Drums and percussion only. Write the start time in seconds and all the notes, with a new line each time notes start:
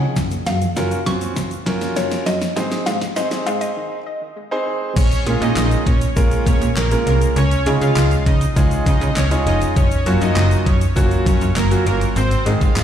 0.16 kick, snare, closed hi-hat, shaker
0.31 closed hi-hat, shaker
0.46 snare, closed hi-hat, shaker
0.62 closed hi-hat, shaker
0.76 snare, closed hi-hat, shaker
0.91 closed hi-hat, shaker
1.06 kick, snare, closed hi-hat, shaker
1.21 closed hi-hat, shaker
1.36 kick, snare, closed hi-hat, shaker
1.51 closed hi-hat, shaker
1.66 kick, snare, closed hi-hat
1.81 snare, closed hi-hat, shaker
1.96 snare, closed hi-hat, shaker
2.11 snare, closed hi-hat, shaker
2.27 snare, closed hi-hat, shaker
2.42 snare, closed hi-hat, shaker
2.57 snare, closed hi-hat, shaker
2.71 snare, closed hi-hat, shaker
2.87 snare, closed hi-hat, shaker
3.01 kick, snare, closed hi-hat, shaker
3.16 snare, closed hi-hat, shaker
3.31 snare, closed hi-hat, shaker
3.47 closed hi-hat, shaker
3.61 closed hi-hat, shaker
4.96 kick, closed hi-hat, crash, shaker
5.12 closed hi-hat, shaker
5.26 closed hi-hat
5.42 closed hi-hat, shaker
5.56 snare, clap, closed hi-hat, shaker
5.71 closed hi-hat, shaker
5.87 kick, closed hi-hat
6.01 closed hi-hat, shaker
6.17 kick, closed hi-hat, shaker
6.31 closed hi-hat, shaker
6.47 kick, closed hi-hat, shaker
6.62 closed hi-hat, shaker
6.76 snare, clap, closed hi-hat, shaker
6.91 closed hi-hat, shaker
7.07 closed hi-hat
7.22 closed hi-hat, shaker
7.36 closed hi-hat, shaker
7.51 closed hi-hat, shaker
7.66 closed hi-hat
7.81 closed hi-hat, shaker
7.96 snare, clap, closed hi-hat, shaker
8.11 closed hi-hat, shaker
8.26 kick, closed hi-hat
8.41 closed hi-hat, shaker
8.57 kick, closed hi-hat, shaker
8.71 closed hi-hat, shaker
8.86 kick, closed hi-hat, shaker
9.01 closed hi-hat, shaker
9.16 snare, clap, closed hi-hat, shaker
9.31 closed hi-hat, shaker
9.47 closed hi-hat
9.62 closed hi-hat, shaker
9.76 kick, closed hi-hat, shaker
9.91 closed hi-hat, shaker
10.06 closed hi-hat
10.21 closed hi-hat, shaker
10.36 snare, clap, closed hi-hat, shaker
10.51 closed hi-hat, shaker
10.66 kick, closed hi-hat
10.81 closed hi-hat, shaker
10.97 kick, closed hi-hat, shaker
11.11 closed hi-hat, shaker
11.26 kick, closed hi-hat, shaker
11.41 closed hi-hat, shaker
11.56 snare, clap, closed hi-hat, shaker
11.71 closed hi-hat, shaker
11.87 closed hi-hat
12.01 closed hi-hat, shaker
12.16 closed hi-hat, shaker
12.31 closed hi-hat, shaker
12.46 closed hi-hat
12.61 kick, closed hi-hat, shaker
12.76 snare, clap, closed hi-hat, shaker